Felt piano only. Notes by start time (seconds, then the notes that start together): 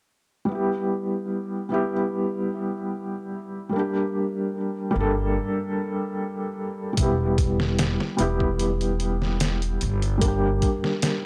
0.45 G3 B3
0.52 E4 G4
1.69 G3 B3 E4
1.74 G4
3.69 G3 A#3
3.76 D4 G4
4.91 G3 A#3
4.97 D4 A4
6.93 G3 B3
7.00 E4 G4
8.17 G3 B3 E4
8.22 G4
10.18 G3 A#3
10.24 D4 G4